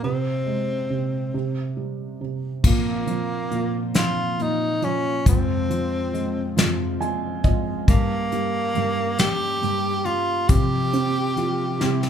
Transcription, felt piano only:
0.03 0.89 C3 medium
0.46 1.31 G#3 soft
0.90 1.32 C3 soft
1.34 2.19 C3 soft
1.77 2.61 G3 soft
2.21 2.63 C3 soft
2.63 3.50 A#2 medium
3.07 3.93 F3 soft
3.51 4.37 A#2 medium
3.95 4.81 F3 soft
4.39 5.23 A#2 soft
4.82 5.24 F3 soft
5.26 7.83 F2 medium
5.70 6.55 F3 soft
6.14 6.99 G#3 medium
6.57 7.43 F3 soft
7.01 7.85 G#3 soft
7.01 7.41 G#5 medium
7.44 7.86 F3 soft
7.44 7.84 D#5 medium
7.89 8.75 G2 medium
8.33 9.18 G3 medium
8.76 9.61 G2 medium
9.20 10.04 G3 medium
9.63 10.47 G2 medium
10.06 10.48 G3 soft
10.50 11.76 C3 medium
10.93 11.78 C4 medium
11.37 11.79 F4 medium
11.81 12.10 C3 medium

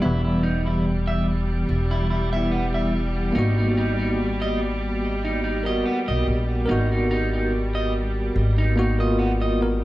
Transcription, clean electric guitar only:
0.02 0.22 E4 loud
0.25 0.43 E4 medium
0.43 0.65 D#4 medium
0.66 0.84 E4 medium
1.07 1.26 E5 loud
1.91 2.09 E4 medium
2.10 2.31 E4 medium
2.33 2.50 E5 loud
2.51 2.65 B3 loud
2.74 2.93 E5 loud
3.35 3.56 D#4 loud
3.58 3.76 D#4 medium
3.77 3.98 D#4 loud
4.00 4.18 D#4 medium
4.42 4.60 D#5 loud
5.25 5.42 D#4 medium
5.44 5.64 D#4 medium
5.66 5.83 D#5 medium
5.85 5.98 B3 loud
6.08 6.26 D#5 loud
6.69 6.89 D#4 loud
6.92 7.10 D#4 medium
7.11 7.32 D#4 loud
7.33 7.51 D#4 medium
7.75 7.93 D#5 loud
8.58 8.76 D#4 medium
8.77 8.97 D#4 medium
9.00 9.17 D#5 loud
9.19 9.32 B3 loud
9.41 9.59 D#5 loud

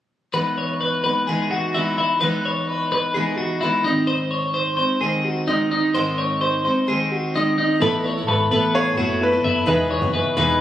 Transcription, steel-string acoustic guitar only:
0.33 1.04 E3 medium
0.33 1.07 G#3 medium
0.33 1.05 B3 medium
0.33 1.04 D#4 medium
1.05 1.27 G#3 soft
1.05 1.28 B3 soft
1.05 1.28 D#4 soft
1.28 1.73 E3 medium
1.28 1.75 G#3 medium
1.28 1.75 B3 medium
1.28 1.77 D#4 medium
1.74 2.19 E3 soft
1.74 2.21 G#3 medium
1.74 2.21 B3 medium
1.74 2.23 D#4 medium
2.20 3.13 E3 medium
2.20 3.15 G#3 medium
2.20 3.15 B3 medium
2.20 3.16 D#4 medium
3.15 3.61 E3 medium
3.15 3.62 G#3 medium
3.15 3.62 B3 medium
3.15 3.64 D#4 medium
3.62 3.85 E3 soft
3.62 3.86 G#3 medium
3.62 3.86 B3 medium
3.62 3.84 D#4 medium
3.85 4.80 G#2 soft
3.85 4.80 D#3 soft
3.85 4.79 G#3 medium
3.85 4.78 C4 medium
3.85 4.78 D#4 medium
4.79 5.00 G#3 soft
4.79 5.01 C4 soft
4.79 5.02 D#4 soft
5.01 5.46 D#3 medium
5.01 5.47 G#3 medium
5.01 5.48 C4 medium
5.01 5.49 D#4 medium
5.47 5.94 D#3 medium
5.47 5.94 G#3 medium
5.47 5.94 C4 medium
5.47 5.95 D#4 medium
5.94 6.65 G#2 medium
5.94 6.65 D#3 medium
5.94 6.65 G#3 medium
5.94 6.65 C4 medium
5.94 6.64 D#4 medium
6.65 6.87 G#3 soft
6.65 6.87 C4 soft
6.65 6.88 D#4 soft
6.87 7.34 D#3 medium
6.87 7.35 G#3 medium
6.87 7.35 C4 medium
6.87 7.36 D#4 medium
7.35 7.81 D#3 medium
7.35 7.81 G#3 medium
7.35 7.82 C4 medium
7.35 7.82 D#4 medium
7.81 8.16 A3 medium
7.81 8.17 B3 medium
7.81 8.17 E4 loud
7.81 8.16 A4 medium
8.17 8.51 B3 soft
8.17 8.52 E4 soft
8.17 8.52 A4 soft
8.52 8.96 A3 medium
8.52 8.98 B3 medium
8.52 8.99 E4 medium
8.52 8.99 A4 medium
8.97 9.32 A3 medium
8.97 9.33 B3 medium
8.97 9.32 E4 medium
8.97 9.30 A4 medium
9.31 9.65 B3 soft
9.31 9.66 E4 soft
9.31 9.67 A4 medium
9.66 10.01 E3 medium
9.66 10.02 B3 medium
9.66 10.02 D#4 medium
9.66 10.00 G#4 loud
10.01 10.36 B3 soft
10.01 10.36 D#4 soft
10.01 10.37 G#4 medium
10.37 10.61 E3 loud
10.37 10.61 B3 medium
10.37 10.61 D#4 loud
10.37 10.61 G#4 medium

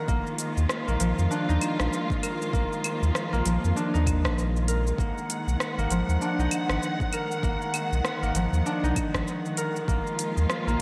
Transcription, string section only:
0.00 4.94 D#3 medium
0.00 9.84 G#3 medium
0.09 4.94 F3 medium
0.09 4.94 A#3 medium
0.09 4.94 F4 medium
4.98 10.82 D#3 medium
4.98 9.84 F#5 medium
9.89 10.82 F3 medium
9.89 10.82 G#3 medium
9.89 10.82 A#3 medium
9.89 10.82 F4 medium

